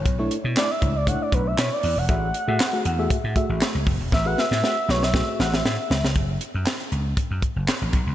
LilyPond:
<<
  \new Staff \with { instrumentName = "Analog synth lead" } { \time 4/4 \key fis \minor \tempo 4 = 118 r4 d''16 e''8 d''16 fis''16 d''16 b'16 e''16 cis''16 d''8 fis''16~ | fis''2~ fis''16 r4. r16 | e''16 fis''16 e''8 e''8 cis''16 e''8. fis''16 e''4 r16 | r1 | }
  \new Staff \with { instrumentName = "FM electric piano" } { \time 4/4 \key fis \minor r16 <a d' e' cis''>16 r8 <a d' e' e''>16 r16 <a d' e' cis''>16 r16 <a d' e' cis''>4 r4 | <a fis' gis' e''>16 r8 <a fis' gis' e''>16 r16 <a fis' gis' fis''>16 r16 <a fis' gis' e''>16 r8 <a fis' gis' e''>8. r8. | r16 <a fis' gis' b'>16 r8 <a fis' gis' fis''>16 r16 <a fis' gis' b'>16 r16 <a fis' gis' e''>4 r4 | r1 | }
  \new Staff \with { instrumentName = "Slap bass" } { \clef bass \time 4/4 \key fis \minor b,,8 r16 b,16 r8 cis,8. r16 b,,8 b,16 r16 e,16 e,,16 | a,,8 r16 a,16 r8 e,8 r16 a,16 r16 a,,16 r16 cis,16 fis,,16 e,,16 | a,,8 r16 a,16 r8 b,,8. r16 a,,8 a,16 r16 cis,16 cis,16 | fis,,8 r16 fis,16 r8 cis,8 r16 fis,16 r16 fis,,16 r16 a,,16 b,,16 cis,16 | }
  \new DrumStaff \with { instrumentName = "Drums" } \drummode { \time 4/4 <hh bd>8 hh8 <hc hh sn>8 <hh bd>8 <hh bd>8 <hh bd>8 <hc hh sn>8 hho8 | <hh bd>8 hh8 <hc hh sn>8 hh8 <hh bd>8 <hh bd>8 <hc hh sn>8 <hho bd>8 | <bd sn>8 sn16 sn16 sn8 sn16 sn16 <bd sn>8 sn16 sn16 sn8 sn16 sn16 | <hh bd>8 hh8 <hc hh sn>16 hh16 hh8 <hh bd>8 <hh bd>8 <hc hh sn>8 <hh bd>8 | }
>>